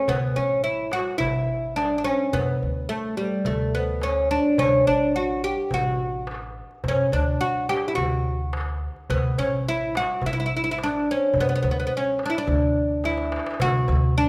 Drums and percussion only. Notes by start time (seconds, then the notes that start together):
0.08 darbuka dum
0.21 darbuka ka
0.64 darbuka ka
0.92 darbuka tek
1.06 darbuka ka
1.20 darbuka dum
1.36 darbuka ka
1.49 darbuka ka
1.78 darbuka tek
1.92 darbuka ka
2.19 darbuka ka
2.33 darbuka dum
2.48 darbuka ka
3.03 darbuka ka
3.31 darbuka ka
3.45 darbuka dum
3.73 darbuka ka
3.88 darbuka ka
4.01 darbuka tek
4.16 darbuka ka
4.31 darbuka ka
4.45 darbuka ka
4.58 darbuka dum
4.72 darbuka ka
5.57 darbuka ka
5.71 darbuka dum
5.85 darbuka ka
6.00 darbuka ka
6.27 darbuka tek
6.42 darbuka ka
6.71 darbuka ka
6.84 darbuka dum
6.98 darbuka ka
7.12 darbuka dum
7.41 darbuka ka
7.69 darbuka tek
7.83 darbuka ka
7.97 darbuka dum
8.12 darbuka ka
8.25 darbuka ka
8.53 darbuka tek
8.68 darbuka ka
8.96 darbuka ka
9.10 darbuka dum
9.38 darbuka dum
9.67 darbuka ka
9.95 darbuka tek
10.09 darbuka ka
10.22 darbuka dum
10.36 darbuka ka
10.50 darbuka ka
10.78 darbuka tek
10.92 darbuka ka
11.20 darbuka ka
11.34 darbuka dum
11.49 darbuka ka
11.64 darbuka dum
11.92 darbuka ka
12.05 darbuka ka
12.19 darbuka tek
12.47 darbuka dum
12.62 darbuka ka
12.77 darbuka ka
12.90 darbuka ka
13.04 darbuka tek
13.18 darbuka ka
13.32 darbuka tek
13.46 darbuka ka
13.60 darbuka dum
13.75 darbuka ka
13.88 darbuka dum
14.17 darbuka ka